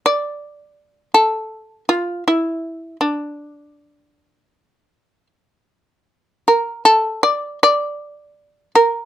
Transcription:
X:1
M:4/4
L:1/8
Q:1/4=80
K:none
V:1 name="Shamisen"
d3 A2 F E2 | D6 z2 | z _B A d d3 B |]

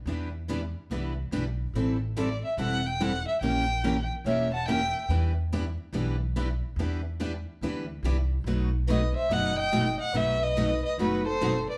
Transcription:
X:1
M:4/4
L:1/8
Q:"Swing" 1/4=143
K:Em
V:1 name="Violin"
z8 | z2 d e f g f e | g3 z e a g2 | z8 |
z8 | z2 ^d e f g2 f | e ^d2 d B c2 =d |]
V:2 name="Soprano saxophone"
z8 | z8 | z4 ^c f e2 | z8 |
z8 | z2 B c ^d d2 d | B B2 B F A2 B |]
V:3 name="Steel-string acoustic guitar"
[E,G,DEB] z [E,G,DEB] z [E,G,DEB] z [E,G,DEB] z | [E,G,CEA] z [E,G,CEA] z [E,G,CEA] z [E,G,CEA] z | [E,^A,^CG^A] z [E,A,CGA] z [E,A,CGA] z [E,A,CGA] z | [E,G,DEB] z [E,G,DEB] z [E,G,DEB] z [E,G,DEB] z |
[E,G,DEB] z [E,G,DEB] z [E,G,DEB] z [E,G,DEB] z | [B,,F,A,^DFB] z [B,,F,A,DFB] z [B,,F,A,DFB] z [B,,F,A,DFB] z | [B,,F,A,^DFB] z [B,,F,A,DFB] z [B,,F,A,DFB] z [B,,F,A,DFB] z |]
V:4 name="Steel-string acoustic guitar"
[E,B,DG] z [E,B,DG] z [E,B,DG] z [E,B,DG] z | [E,G,CEA] z [E,G,CEA] z [E,G,CEA] z [E,G,CEA] z | [E,^A,^CG^A] z [E,A,CGA] z [E,A,CGA] z [E,A,CGA] z | [E,B,DG] z [E,B,DG] z [E,B,DG] z [E,B,DG] z |
[E,B,DG] z [E,B,DG] z [E,B,DG] z [E,B,DG] z | [B,,F,A,^DF] z [B,,F,A,DF] z [B,,F,A,DF] z [B,,F,A,DF] z | [B,,F,A,^DF] z [B,,F,A,DF] z [B,,F,A,DF] z [B,,F,A,DF] z |]
V:5 name="Upright bass" clef=bass
E,,4 C,,2 B,,,2 | A,,,4 E,,,4 | ^A,,,4 E,,,4 | E,,4 B,,,4 |
E,,4 D,,2 C,,2 | B,,,4 F,,,4 | B,,,4 F,,,4 |]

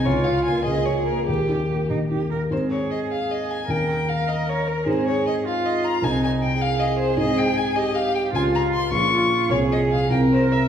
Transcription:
X:1
M:6/8
L:1/8
Q:3/8=102
K:Ab
V:1 name="Violin"
d f a e d B | G3 z3 | c d e f e a | g g f e d B |
c d e f e b | a a g f e c | e g a e f g | a b c' d'3 |
d e f g c =e |]
V:2 name="Cello"
F3 A3 | G3 E G B | A6 | B6 |
A3 F3 | E3 A3- | A3 G3 | F3 F3 |
A3 B3 |]
V:3 name="Grand piano"
D,, F B, D,, F B, | E,, E B, E,, E B, | [A,,CEA]6 | [E,,DEB]6 |
[A,,CEA]6 | [C,,CEA]6 | [A,,CEA]6 | [D,,DFA]3 [B,,,DFA]3 |
[C,,CFA]3 [C,,C=EB]3 |]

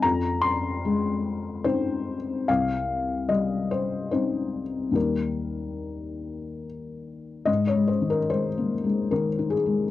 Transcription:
X:1
M:3/4
L:1/16
Q:1/4=73
K:Ab
V:1 name="Felt piano"
b2 c'6 c4 | f4 e2 c2 c4 | B8 z4 | e d c B c4 B2 A2 |]
V:2 name="Felt piano" clef=bass
F,,4 A,4 [CE]4 | C,,4 G,4 [CE]4 | [E,,E,G,E]12 | (3A,,2 A,2 E,2 (3A,2 B,2 A,2 (3E,2 E2 A,2 |]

